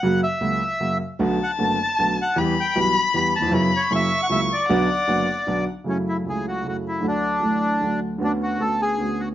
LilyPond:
<<
  \new Staff \with { instrumentName = "Violin" } { \time 3/4 \key b \minor \tempo 4 = 154 r2. | a''2. | b''2. | b''4 cis'''2 |
fis''2~ fis''8 r8 | \key fis \minor r2. | r2. | r2. | }
  \new Staff \with { instrumentName = "Bandoneon" } { \time 3/4 \key b \minor fis''8 e''2 r8 | r8 fis''8 a''8 a''4 fis''8 | r8 g''8 b''8 b''8 b''8 a''8 | r8 cis''8 e''8. fis''16 e''8 d''8~ |
d''2~ d''8 r8 | \key fis \minor cis'8 e'8 gis'8 fis'8 fis'8 e'8 | d'2~ d'8 r8 | d'8 fis'8 a'8 gis'4 fis'8 | }
  \new Staff \with { instrumentName = "Grand piano" } { \clef bass \time 3/4 \key b \minor <fis, cis fis ais fis'>8 r8 <cis, cis fis ais fis'>8 r8 <fis, cis fis ais fis'>8 r8 | <b,, b, d a b fis'>8 r8 <fis,, fis, d a b fis'>8 r8 <b,, b, d a b fis'>8 r8 | <e, e g b g'>8 r8 <b,, b, e g b g'>8 r8 <e, e g b g'>8 r32 dis,32 e,32 eis,32 | <fis, cis fis b e'>8 r8 <fis, cis fis ais e'>8 r8 <cis, cis fis ais e'>8 r8 |
<b,, b, d fis b fis'>8 r8 <fis,, fis, d fis b fis'>8 r8 <b,, b, d fis b fis'>8 r8 | \key fis \minor <fis, cis fis a e'>4 <cis, cis fis a e'>4 <fis, cis fis a e'>4 | <d, d fis a fis'>4 <a,, a, d fis a fis'>4 <d, d fis a fis'>4 | <d, d b cis' fis'>4 <d, d b cis' fis'>4 <d, d b cis' fis'>4 | }
>>